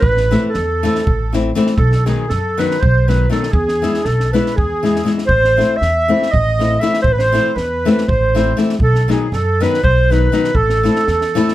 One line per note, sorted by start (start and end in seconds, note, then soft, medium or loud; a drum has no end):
0.00 0.34 A1 loud
0.00 0.44 B4 loud
0.00 0.47 B4 loud
0.00 kick medium
0.17 snare soft
0.31 0.48 E3 medium
0.31 0.49 A3 medium
0.31 0.49 C4 medium
0.31 0.49 E4 medium
0.31 snare soft
0.47 1.31 A4 medium
0.47 0.52 B4 medium
0.47 0.55 B4 soft
0.54 0.87 E2 medium
0.54 1.33 A4 medium
0.54 snare soft
0.83 1.01 E3 medium
0.83 1.01 A3 medium
0.83 1.01 C4 medium
0.83 1.02 E4 medium
0.83 snare soft
0.95 snare soft
1.07 1.50 A1 medium
1.07 kick loud
1.33 1.50 E3 medium
1.33 1.50 A3 medium
1.33 1.50 C4 medium
1.33 1.51 E4 medium
1.33 snare soft
1.55 1.72 E3 medium
1.55 1.73 A3 medium
1.55 1.73 C4 medium
1.55 1.73 E4 medium
1.55 snare soft
1.67 snare soft
1.76 2.10 B1 medium
1.76 2.04 A4 medium
1.76 2.07 A4 medium
1.76 kick medium
1.92 snare soft
2.06 2.24 D#3 medium
2.06 2.24 F#3 medium
2.06 2.25 B3 medium
2.06 2.25 D#4 medium
2.06 2.30 G#4 medium
2.06 2.31 G#4 medium
2.06 snare soft
2.29 2.62 F#2 medium
2.29 2.59 A4 medium
2.29 2.61 A4 loud
2.29 snare soft
2.57 2.76 D#3 medium
2.57 2.76 F#3 medium
2.57 2.77 B3 medium
2.57 2.77 D#4 medium
2.57 2.82 B4 medium
2.57 2.83 B4 medium
2.57 snare soft
2.71 snare soft
2.80 3.25 B1 medium
2.80 3.08 C5 medium
2.80 kick medium
3.07 3.25 D#3 medium
3.07 3.25 F#3 medium
3.07 3.25 B3 medium
3.07 3.26 D#4 medium
3.07 3.29 B4 medium
3.07 snare soft
3.30 3.47 D#3 medium
3.30 3.47 F#3 medium
3.30 3.48 B3 medium
3.30 3.48 D#4 medium
3.30 3.52 A4 medium
3.30 3.54 A4 medium
3.30 snare soft
3.43 snare soft
3.50 3.85 E2 loud
3.50 4.04 G#4 medium
3.50 4.07 G#4 medium
3.50 kick medium
3.68 snare soft
3.82 4.00 E3 medium
3.82 4.00 G#3 medium
3.82 4.00 B3 medium
3.82 4.00 E4 medium
3.82 snare soft
3.94 snare soft
4.03 4.37 B1 medium
4.03 4.34 A4 medium
4.03 4.32 A4 medium
4.03 snare soft
4.20 snare soft
4.33 4.51 E3 medium
4.33 4.52 G#3 medium
4.33 4.52 B3 medium
4.33 4.52 E4 medium
4.33 4.58 B4 medium
4.33 4.56 B4 medium
4.33 snare soft
4.46 snare soft
4.56 5.00 E2 medium
4.56 5.11 G#4 medium
4.56 kick medium
4.83 5.00 E3 medium
4.83 5.00 G#3 soft
4.83 5.01 B3 soft
4.83 5.01 E4 medium
4.83 snare soft
4.96 snare soft
5.05 5.22 E3 medium
5.05 5.22 G#3 medium
5.05 5.23 B3 medium
5.05 5.23 E4 medium
5.05 snare soft
5.18 snare soft
5.26 5.60 A1 medium
5.26 5.76 C5 medium
5.26 5.78 C5 loud
5.26 kick medium
5.44 snare soft
5.56 5.74 E3 medium
5.56 5.75 A3 medium
5.56 5.75 C4 medium
5.56 5.75 E4 medium
5.56 snare soft
5.77 6.33 E5 loud
5.77 6.32 E5 loud
5.81 6.13 E2 medium
5.81 snare soft
6.08 6.27 E3 medium
6.08 6.27 A3 medium
6.08 6.27 C4 medium
6.08 6.27 E4 medium
6.23 snare soft
6.30 6.76 A1 medium
6.30 6.80 D#5 loud
6.30 6.81 D#5 loud
6.30 kick medium
6.59 6.76 E3 soft
6.59 6.76 A3 medium
6.59 6.76 C4 medium
6.59 6.77 E4 medium
6.59 snare soft
6.80 6.98 E3 medium
6.80 6.98 A3 medium
6.80 6.99 C4 medium
6.80 6.99 E4 medium
6.80 7.02 E5 loud
6.80 7.04 E5 medium
6.80 snare soft
6.94 snare soft
7.02 7.36 A1 medium
7.02 7.11 C5 medium
7.02 7.14 C5 loud
7.02 kick medium
7.12 7.21 B4 medium
7.18 7.55 C5 loud
7.18 7.56 C5 loud
7.18 snare soft
7.32 7.50 E3 medium
7.32 7.51 A3 medium
7.32 7.51 C4 medium
7.32 7.51 E4 medium
7.32 snare soft
7.54 7.87 E2 medium
7.54 8.04 B4 medium
7.54 8.10 B4 medium
7.54 snare soft
7.85 8.03 E3 medium
7.85 8.03 A3 medium
7.85 8.03 C4 medium
7.85 8.04 E4 medium
7.85 snare soft
7.98 snare soft
8.08 8.51 A1 medium
8.08 8.57 C5 medium
8.08 kick medium
8.35 8.52 E3 medium
8.35 8.52 A3 soft
8.35 8.52 C4 medium
8.35 8.52 E4 medium
8.35 snare soft
8.57 8.74 E3 medium
8.57 8.74 A3 medium
8.57 8.74 C4 medium
8.57 8.75 E4 medium
8.57 snare soft
8.69 snare soft
8.79 9.11 B1 medium
8.79 9.08 A4 medium
8.79 kick medium
8.83 9.13 A4 loud
8.95 snare soft
9.08 9.26 D#3 medium
9.08 9.26 F#3 medium
9.08 9.26 B3 medium
9.08 9.27 D#4 medium
9.08 9.35 G#4 medium
9.08 9.34 G#4 medium
9.08 snare soft
9.32 9.63 F#2 medium
9.32 9.62 A4 medium
9.32 9.63 A4 medium
9.32 snare soft
9.60 9.78 D#3 medium
9.60 9.78 F#3 medium
9.60 9.79 B3 medium
9.60 9.79 D#4 medium
9.60 9.84 B4 loud
9.60 9.85 B4 medium
9.60 snare soft
9.74 snare soft
9.83 10.26 B1 medium
9.83 10.13 C5 loud
9.83 10.10 C5 medium
9.83 kick medium
10.10 10.27 D#3 medium
10.10 10.27 F#3 soft
10.10 10.28 B3 medium
10.10 10.28 D#4 medium
10.10 10.57 B4 loud
10.10 10.56 B4 medium
10.10 snare soft
10.32 10.49 D#3 medium
10.32 10.49 F#3 medium
10.32 10.50 B3 medium
10.32 10.50 D#4 medium
10.32 snare soft
10.44 snare soft
10.55 10.86 A1 medium
10.55 11.55 A4 medium
10.55 11.55 A4 loud
10.55 kick medium
10.70 snare soft
10.83 11.01 E3 medium
10.83 11.01 A3 medium
10.83 11.02 C4 medium
10.83 11.02 E4 medium
10.83 snare soft
10.96 snare soft
11.07 11.39 E2 medium
11.07 snare soft
11.21 snare soft
11.35 11.53 E3 medium
11.35 11.53 A3 medium
11.35 11.54 C4 medium
11.35 11.54 E4 loud
11.35 snare soft
11.48 snare soft